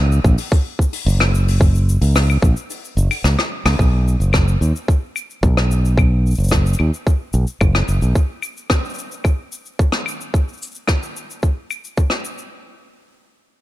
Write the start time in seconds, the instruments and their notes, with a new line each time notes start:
Already playing: fingered electric bass C#2
0.12 shaker
0.24 fingered electric bass A#1, kick, shaker
0.38 open hi-hat, shaker
0.52 kick, open hi-hat, shaker
0.79 kick, shaker
0.93 open hi-hat, shaker
1.06 fingered electric bass F#1, open hi-hat, shaker
1.20 cross-stick, claves
1.35 shaker
1.48 open hi-hat, shaker
1.61 kick, open hi-hat, shaker
1.75 shaker
1.89 shaker
2.01 fingered electric bass C#2, open hi-hat, shaker
2.15 cross-stick, open hi-hat, shaker
2.30 claves, shaker
2.42 fingered electric bass A#1, kick, shaker
2.57 shaker
2.70 open hi-hat, shaker
2.85 shaker
2.97 fingered electric bass F#1, shaker
3.11 open hi-hat, claves, shaker
3.24 fingered electric bass C#2, cross-stick, shaker
3.39 cross-stick
3.65 fingered electric bass C#2, cross-stick, open hi-hat, claves, shaker
3.79 fingered electric bass B1, kick, shaker
4.08 shaker
4.20 fingered electric bass F#1, shaker
4.33 kick, cross-stick, claves, shaker
4.48 shaker
4.61 fingered electric bass D#2, shaker
4.76 shaker
4.88 kick, shaker
5.16 claves, shaker
5.30 shaker
5.43 fingered electric bass B1, kick, shaker
5.57 cross-stick
5.71 shaker
5.85 shaker
5.97 kick, claves, shaker
6.26 shaker
6.31 shaker
6.35 fingered electric bass F#1, shaker
6.39 shaker
6.44 shaker
6.48 kick, cross-stick, shaker
6.53 shaker
6.66 shaker
6.73 shaker
6.79 fingered electric bass D#2, claves
6.94 shaker
7.07 kick, shaker
7.33 fingered electric bass B1, shaker
7.47 shaker
7.61 fingered electric bass F#1, kick, claves, shaker
7.75 cross-stick
7.88 fingered electric bass F#1, shaker
8.02 fingered electric bass B1, shaker
8.15 kick, shaker
8.42 claves, shaker
8.57 shaker
8.70 kick, cross-stick, shaker
8.85 shaker
8.89 shaker
8.94 shaker
8.98 shaker
9.12 shaker
9.24 kick, claves, shaker
9.52 shaker
9.66 shaker
9.79 kick, shaker
9.92 cross-stick
10.06 claves, shaker
10.21 shaker
10.34 kick, shaker
10.48 shaker
10.53 shaker
10.57 shaker
10.62 shaker
10.66 shaker
10.71 shaker
10.75 shaker
10.88 kick, cross-stick, claves, shaker
11.03 shaker
11.17 shaker
11.30 shaker
11.43 kick, shaker
11.71 claves, shaker
11.84 shaker
11.98 kick, shaker
12.10 cross-stick
12.25 shaker
12.38 shaker